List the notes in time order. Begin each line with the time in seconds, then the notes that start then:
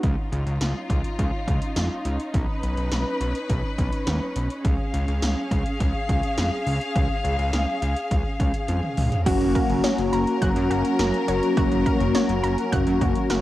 0.03 C#2 C#4 D#4 F4, kick, closed hi-hat
0.32 C#2, closed hi-hat
0.47 C#2, closed hi-hat
0.61 C#2, snare, closed hi-hat
0.90 C#2, kick, closed hi-hat
1.04 closed hi-hat
1.19 C#2, kick, closed hi-hat
1.48 C#2, kick, closed hi-hat
1.62 closed hi-hat
1.76 F2, snare, closed hi-hat
2.05 C#2, closed hi-hat
2.20 closed hi-hat
2.34 B1 B4, kick, closed hi-hat
2.63 B1, closed hi-hat
2.77 B1, closed hi-hat
2.92 B1, snare, closed hi-hat
3.21 B1, closed hi-hat
3.35 closed hi-hat
3.50 B1, kick, closed hi-hat
3.78 B1, kick, closed hi-hat
3.92 closed hi-hat
4.07 D#2, snare, closed hi-hat
4.36 B1, closed hi-hat
4.50 closed hi-hat
4.65 C#2 G#4 F5, kick, closed hi-hat
4.94 C#2, closed hi-hat
5.08 C#2, closed hi-hat
5.22 C#2, snare, closed hi-hat
5.51 C#2, kick, closed hi-hat
5.66 closed hi-hat
5.80 C#2, kick, closed hi-hat
6.09 C#2, kick, closed hi-hat
6.23 closed hi-hat
6.38 F2, snare, closed hi-hat
6.67 C#2, open hi-hat
6.81 closed hi-hat
6.96 C#2, kick, closed hi-hat
7.24 C#2, closed hi-hat
7.39 C#2, closed hi-hat
7.53 C#2, snare, closed hi-hat
7.82 C#2, closed hi-hat
7.96 closed hi-hat
8.11 C#2, kick, closed hi-hat
8.40 C#2, kick, closed hi-hat
8.54 closed hi-hat
8.68 F2, closed hi-hat, high tom
8.83 mid tom
8.97 C#2, mid tom, open hi-hat
9.12 closed hi-hat, floor tom
9.26 F#1 F#3 A#3 C#4 F#4 A#4, kick, closed hi-hat, crash
9.41 F#1, closed hi-hat
9.55 A#4, kick, closed hi-hat
9.70 F#1, closed hi-hat
9.84 C#5, snare, closed hi-hat
9.98 F#1, closed hi-hat
10.13 F#1 A#5, closed hi-hat
10.27 closed hi-hat
10.42 F#1 F#6, kick, closed hi-hat
10.56 F#2, closed hi-hat
10.71 F#1 F#4, closed hi-hat
10.85 closed hi-hat
10.99 F#1 A#4, snare, closed hi-hat
11.14 closed hi-hat
11.28 F#1 C#5, closed hi-hat
11.43 closed hi-hat
11.57 F#1 F#4, kick, closed hi-hat
11.71 F#1, closed hi-hat
11.86 A#4, kick, closed hi-hat
12.00 F#1, closed hi-hat
12.15 C#5, snare, closed hi-hat
12.29 F#1, closed hi-hat
12.44 F#1 A#5, closed hi-hat
12.58 closed hi-hat
12.72 F#1 F#6, kick, closed hi-hat
12.87 F#2, closed hi-hat
13.01 F#1 F#4, kick, closed hi-hat
13.16 closed hi-hat
13.30 F#1 A#4, snare, closed hi-hat